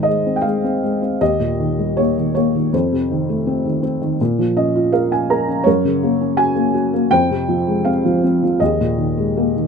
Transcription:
0.00 1.17 G#2 medium
0.00 1.18 D#3 soft
0.00 1.17 D#4 soft
0.00 1.23 C5 medium
0.00 0.37 D#5 medium
0.07 0.44 G#3 soft
0.26 0.63 C4 soft
0.36 0.44 G5 medium
0.42 1.22 F5 medium
0.46 0.82 G#3 soft
0.64 1.01 C4 soft
0.84 1.20 G#3 soft
1.02 1.21 C4 soft
1.21 2.69 D#2 medium
1.21 2.70 G4 medium
1.21 2.00 D#5 medium
1.40 2.69 A#2 soft
1.60 2.16 D#3 soft
1.79 2.71 G3 soft
1.97 2.35 A#3 soft
1.97 2.33 C#5 medium
2.18 2.54 D#3 soft
2.35 2.73 A#3 soft
2.35 2.74 C#5 medium
2.55 2.73 D#3 soft
2.73 4.16 F2 medium
2.73 4.17 A4 soft
2.73 3.80 C5 medium
2.92 4.16 C3 soft
3.11 3.64 D#3 soft
3.29 4.18 A3 soft
3.47 3.81 C4 soft
3.65 4.00 D#3 soft
3.83 4.19 C4 medium
4.02 4.19 D#3 soft
4.21 5.63 A#2 medium
4.39 5.63 F3 soft
4.57 5.10 C#4 soft
4.57 4.91 D#5 medium
4.76 5.64 F4 soft
4.92 5.29 A#4 medium
4.92 5.10 F5 medium
5.12 5.46 C#4 soft
5.12 5.29 G#5 medium
5.30 5.65 A#4 soft
5.30 5.64 A#5 medium
5.48 5.66 C#4 soft
5.64 7.07 F#2 medium
5.64 7.07 A#4 medium
5.64 6.39 C#5 medium
5.85 7.08 C#3 soft
6.03 6.54 A#3 medium
6.21 7.09 C#4 soft
6.37 6.72 F#4 soft
6.37 7.13 G#5 medium
6.55 6.92 A#3 soft
6.74 7.10 F#4 soft
6.94 7.11 A#3 soft
7.11 8.57 F2 medium
7.11 8.57 C5 medium
7.11 7.88 G5 loud
7.31 8.57 C3 medium
7.48 8.03 F3 soft
7.67 8.58 G#3 soft
7.85 8.22 C4 medium
7.85 8.62 F5 medium
8.05 8.41 F3 soft
8.24 8.60 C4 soft
8.43 8.61 F3 soft
8.60 9.67 D#2 medium
8.60 9.67 G#4 soft
8.60 9.67 D#5 medium
8.81 9.67 A#2 soft
8.98 9.55 D#3 soft
9.17 9.67 G#3 soft
9.37 9.67 A#3 soft
9.56 9.67 D#3 soft

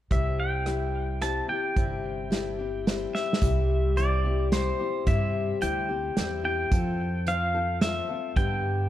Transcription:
0.10 1.39 C2 medium
0.10 0.66 C3 medium
0.10 0.65 G3 medium
0.10 0.66 C4 medium
0.10 0.66 E4 medium
0.10 0.67 G4 medium
0.10 0.40 E5 medium
0.10 kick medium
0.10 closed hi-hat medium
0.40 1.22 G5 medium
0.66 1.20 G3 medium
0.66 1.21 C4 soft
0.66 1.22 E4 medium
0.66 1.22 G4 medium
0.66 cross-stick medium
0.66 closed hi-hat medium
1.21 1.49 G3 soft
1.21 1.49 C4 medium
1.21 1.48 E4 soft
1.21 1.47 G4 medium
1.21 1.49 A5 medium
1.21 cross-stick medium
1.21 closed hi-hat medium
1.48 1.76 C4 soft
1.48 1.76 E4 soft
1.48 1.76 G4 soft
1.48 3.10 G5 medium
1.76 3.05 G1 medium
1.76 2.32 C3 medium
1.76 2.29 G3 medium
1.76 2.30 C4 medium
1.76 2.31 E4 medium
1.76 2.32 G4 medium
1.76 kick medium
1.76 closed hi-hat medium
2.31 2.59 G3 medium
2.31 2.59 C4 medium
2.31 2.58 E4 medium
2.31 2.57 G4 medium
2.31 snare medium
2.31 closed hi-hat medium
2.59 2.86 C4 soft
2.59 2.86 E4 soft
2.59 2.86 G4 soft
2.86 3.40 G3 medium
2.86 3.41 C4 medium
2.86 3.41 E4 medium
2.86 3.41 G4 medium
2.86 snare medium
2.86 closed hi-hat medium
3.15 4.00 E5 medium
3.15 snare soft
3.33 snare medium
3.41 4.70 C2 medium
3.41 3.97 C3 medium
3.41 3.95 G3 medium
3.41 3.96 C4 medium
3.41 3.96 E4 medium
3.41 3.97 G4 medium
3.41 kick medium
3.41 closed hi-hat medium
3.96 4.24 G3 soft
3.96 4.24 C4 medium
3.96 4.24 E4 medium
3.96 4.23 G4 medium
3.96 4.48 D5 medium
3.96 closed hi-hat medium
4.24 4.52 C4 soft
4.24 4.52 E4 soft
4.24 4.52 G4 soft
4.52 4.79 G3 medium
4.52 4.80 C4 medium
4.52 4.80 E4 medium
4.52 4.78 G4 medium
4.52 5.09 C5 medium
4.52 snare medium
4.52 closed hi-hat medium
4.80 5.06 C4 soft
4.80 5.06 E4 soft
4.80 5.06 G4 soft
5.06 5.50 G2 medium
5.06 5.62 C3 medium
5.06 5.60 G3 medium
5.06 5.62 C4 medium
5.06 5.61 E4 medium
5.06 5.62 G4 medium
5.06 5.64 E5 medium
5.06 kick loud
5.06 closed hi-hat medium
5.61 6.09 D2 medium
5.61 5.89 G3 medium
5.61 5.89 C4 medium
5.61 5.88 E4 medium
5.61 5.88 G4 medium
5.61 6.44 G5 medium
5.61 closed hi-hat medium
5.89 6.16 C4 soft
5.89 6.17 E4 soft
5.89 6.17 G4 soft
6.16 6.64 E2 medium
6.16 6.44 G3 soft
6.16 6.45 C4 medium
6.16 6.44 E4 medium
6.16 6.42 G4 medium
6.16 snare medium
6.16 closed hi-hat medium
6.44 6.71 C4 soft
6.44 6.72 E4 soft
6.44 6.72 G4 soft
6.44 7.28 G5 medium
6.72 7.99 F2 medium
6.72 7.26 F3 medium
6.72 7.26 C4 medium
6.72 7.27 F4 medium
6.72 7.27 A4 medium
6.72 kick loud
6.72 closed hi-hat medium
7.27 7.54 F3 medium
7.27 7.55 C4 medium
7.27 7.54 F4 medium
7.27 7.53 A4 medium
7.27 7.79 F5 medium
7.27 closed hi-hat medium
7.54 7.81 C4 soft
7.54 7.82 F4 soft
7.54 7.82 A4 soft
7.81 8.09 F3 medium
7.81 8.09 C4 medium
7.81 8.09 F4 medium
7.81 8.07 A4 medium
7.81 8.38 E5 medium
7.81 snare medium
7.81 closed hi-hat medium
8.09 8.37 C4 soft
8.09 8.37 F4 soft
8.09 8.36 A4 soft
8.36 8.89 G2 medium
8.36 8.89 D3 medium
8.36 8.89 G3 medium
8.36 8.89 B3 medium
8.36 8.89 D4 medium
8.36 8.89 G4 medium
8.36 8.89 G5 loud
8.36 kick loud
8.36 closed hi-hat medium

